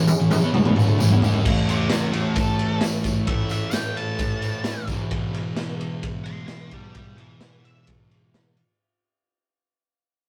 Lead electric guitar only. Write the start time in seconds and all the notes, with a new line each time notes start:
1.69 C5 E5
1.90 G4 C5
2.12 E4 A4
2.40 A4
3.27 E5
3.52 E5
3.73 G5
3.97 A5
6.24 G#5 C6
6.46 G#5 C6
6.73 D5 G5
6.96 D5 G5
7.17 B4 E5
7.44 B4 E5
7.65 E5